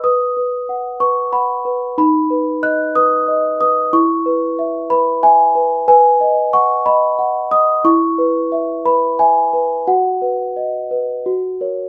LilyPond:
\new Staff \with { instrumentName = "Celesta" } { \time 3/4 \key b \major \tempo 4 = 92 << { dis'''4. cis'''8 b''4 | b''4 fis'''8 dis'''4 dis'''8 | \key e \lydian cis'''4. b''8 gis''4 | gis''4 cis'''8 b''4 dis'''8 |
cis'''4. b''8 gis''4 | fis''2~ fis''8 r8 | } \\ { b'8 b'8 fis''8 b'8 fis''8 b'8 | dis'8 b'8 dis''8 b'8 dis''8 b'8 | e'8 b'8 e''8 b'8 e''8 b'8 | b'8 dis''8 fis''8 dis''8 fis''8 dis''8 |
e'8 b'8 e''8 b'8 e''8 b'8 | fis'8 b'8 dis''8 b'8 fis'8 <ais' cis''>8 | } >> }